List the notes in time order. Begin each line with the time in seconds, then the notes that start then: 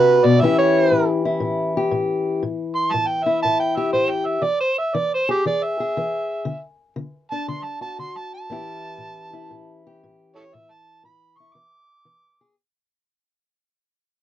Already playing: C3 D4 F#4 B4
0.24 B2 D5
0.41 A2 E3 C#4 E4 G4 E5
0.59 C#5
0.92 A2
1.25 E4
1.40 A2
1.77 G4
1.91 A2
2.43 A2
2.75 C6
2.93 A2 A5
3.07 G5
3.24 E4 E5
3.43 A2 A5
3.60 G5
3.77 G4 E5
3.93 A2 C5
4.10 G5
4.27 E5
4.42 E3 D5
4.61 C5
4.78 E5
4.95 E3 D5
5.15 C5
5.29 G4 G#4
5.46 E3 D5
5.63 E5
5.80 G#4
5.97 E3
6.45 D3
6.96 D3
7.31 D4 A5
7.48 D3 C6
7.64 A5
7.81 F#4 A5
7.99 D3 C6
8.17 A5
8.34 A5
8.50 A2 E3 C#4 E4 G4
8.98 A2
9.33 E4
9.51 A2
9.87 G4
10.03 A2
10.35 E4 A4 C#5
10.54 A2 E5
10.71 A5
11.04 A2 B5
11.38 E4 C#6
11.55 E3 D6
12.05 E3
12.41 G#4